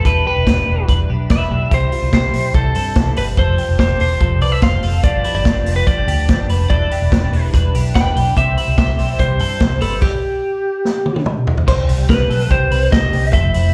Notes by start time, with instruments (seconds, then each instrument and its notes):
0.04 fingered electric bass E1, clean electric guitar E3 G3 D4 E4 A4 B4, lead electric guitar B4, kick, closed hi-hat
0.25 clean electric guitar D4 E4 G4 B4, lead electric guitar B4
0.36 fingered electric bass E1
0.46 fingered electric bass E1, clean electric guitar G3 D4 E4 G4 B4, kick, snare, closed hi-hat
0.67 fingered electric bass E1, clean electric guitar D4 E4 B4
0.87 fingered electric bass E1, clean electric guitar E3 G3 D4 E4 B4, kick, closed hi-hat
1.08 fingered electric bass B1, clean electric guitar D4 E4 G4 B4
1.29 fingered electric bass E1, clean electric guitar G3 D4 E4 B4, lead electric guitar E5, kick, snare, closed hi-hat
1.50 fingered electric bass B1, clean electric guitar D4 E4 G4 B4
1.71 fingered electric bass C2, clean electric guitar C3 E3 G3 C4 E4 G4, lead electric guitar C5, kick, closed hi-hat
1.91 clean electric guitar G3 C4 E4 F4, open hi-hat
2.02 fingered electric bass C2
2.12 fingered electric bass C2, clean electric guitar E3 G3 C4 E4 G4, lead electric guitar C5, kick, snare, closed hi-hat
2.32 fingered electric bass B1, clean electric guitar G3 C4 E4, open hi-hat
2.54 fingered electric bass C2, clean electric guitar C3 E3 G3 C4 E4, lead electric guitar A4, kick, closed hi-hat
2.74 fingered electric bass G2, clean electric guitar G3 C4 E4 A4, open hi-hat
2.95 fingered electric bass C2, clean electric guitar E3 G3 C4 E4, kick, snare, closed hi-hat
3.16 fingered electric bass G1, clean electric guitar G3 C4 E4 B4, lead electric guitar B4, open hi-hat
3.37 fingered electric bass F1, clean electric guitar F3 G3 C4 F4 A4, lead electric guitar C5, kick, closed hi-hat
3.58 clean electric guitar C4 F4 G4 A4, open hi-hat
3.69 fingered electric bass F1
3.78 fingered electric bass F1, clean electric guitar G3 C4 F4 G4 A4, lead electric guitar C5, kick, snare, closed hi-hat
3.99 fingered electric bass E1, clean electric guitar C4 F4 A4, lead electric guitar C5, open hi-hat
4.20 fingered electric bass F1, clean electric guitar F3 G3 C4 F4 A4, kick, closed hi-hat
4.40 fingered electric bass C2, clean electric guitar C4 F4 A4 B4, lead electric guitar D5, open hi-hat
4.52 lead electric guitar E5
4.61 fingered electric bass F1, clean electric guitar G3 C4 F4 A4 C5, lead electric guitar F5, kick, snare, closed hi-hat
4.82 fingered electric bass F1, clean electric guitar C4 F4 A4, open hi-hat
5.03 fingered electric bass G1, clean electric guitar G2 D3 F3 B3 D4 F4 G4, lead electric guitar D5, kick, closed hi-hat
5.23 clean electric guitar F3 B3 D4 E4 G4, open hi-hat
5.34 fingered electric bass G1, lead electric guitar D5
5.44 fingered electric bass G1, clean electric guitar F3 B3 D4 F4 G4, kick, snare, closed hi-hat
5.65 fingered electric bass F1, clean electric guitar F3 B3 D4 G4, open hi-hat
5.76 lead electric guitar B4
5.86 fingered electric bass G1, clean electric guitar G2 D3 F3 B3 D4 G4, lead electric guitar D5, kick, closed hi-hat
6.06 fingered electric bass D2, clean electric guitar F3 B3 D4 G4, open hi-hat
6.28 fingered electric bass G1, clean electric guitar F3 B3 D4 G4, kick, snare, closed hi-hat
6.49 fingered electric bass F1, clean electric guitar F3 B3 D4 G4 B4, open hi-hat
6.69 fingered electric bass E1, clean electric guitar E3 G3 D4 E4 A4 B4, lead electric guitar D5, kick, closed hi-hat
6.90 clean electric guitar D4 E4 G4 B4, open hi-hat
7.02 fingered electric bass E1
7.10 fingered electric bass E1, clean electric guitar G3 D4 E4 G4 B4, kick, snare, closed hi-hat
7.31 fingered electric bass E1, clean electric guitar D4 E4 B4, open hi-hat
7.52 fingered electric bass E1, clean electric guitar E3 G3 D4 E4 B4, kick, closed hi-hat
7.73 fingered electric bass B1, clean electric guitar D4 E4 G4 B4, open hi-hat
7.94 fingered electric bass E1, clean electric guitar G3 D4 E4 B4, lead electric guitar G5, kick, snare, closed hi-hat
8.15 fingered electric bass B1, clean electric guitar D4 E4 G4 B4, open hi-hat
8.36 fingered electric bass C2, clean electric guitar C3 E3 G3 C4 E4 G4 C5, lead electric guitar E5, kick, closed hi-hat
8.56 clean electric guitar G3 C4 E4 C5, open hi-hat
8.68 fingered electric bass C2
8.77 fingered electric bass C2, clean electric guitar G3 C4 E4 G4 C5, lead electric guitar E5, kick, snare, closed hi-hat
8.97 fingered electric bass B1, clean electric guitar G3 C4 E4 C5, open hi-hat
9.19 fingered electric bass C2, clean electric guitar C3 E3 G3 C4 E4 C5, lead electric guitar C5, kick, closed hi-hat
9.39 fingered electric bass G2, clean electric guitar G3 C4 E4 A4 C5, open hi-hat
9.60 fingered electric bass C2, clean electric guitar G3 C4 E4 C5, kick, snare, closed hi-hat
9.80 fingered electric bass G1, clean electric guitar G3 C4 E4 B4 C5, lead electric guitar A4, open hi-hat
10.02 lead electric guitar G4, kick, crash
10.85 snare
11.06 high tom
11.16 high tom
11.26 mid tom
11.47 floor tom
11.57 floor tom
11.66 fingered electric bass C2, clean electric guitar C3 D#3 G3 C4 G4 C5, kick, crash
11.87 fingered electric bass C2, clean electric guitar G3 C4 G4, open hi-hat
12.09 fingered electric bass C2, clean electric guitar C3 D#3 G3 C4 G4 B4, lead electric guitar B4, kick, snare, closed hi-hat
12.29 fingered electric bass B1, clean electric guitar G3 C4 G4 A4, open hi-hat
12.49 fingered electric bass C2, clean electric guitar D#3 G3 C4 G4, lead electric guitar C5, kick, closed hi-hat
12.70 fingered electric bass C2, clean electric guitar G3 C4 G4 B4, open hi-hat
12.91 fingered electric bass C2, clean electric guitar C3 D#3 G3 C4 G4 A4, lead electric guitar D#5, kick, snare, closed hi-hat
13.12 fingered electric bass C2, clean electric guitar G3 C4 G4, open hi-hat
13.33 fingered electric bass F1, clean electric guitar F3 A3 C4 E4 A4, lead electric guitar E5, kick, closed hi-hat
13.53 fingered electric bass F1, clean electric guitar A3 C4 E4, open hi-hat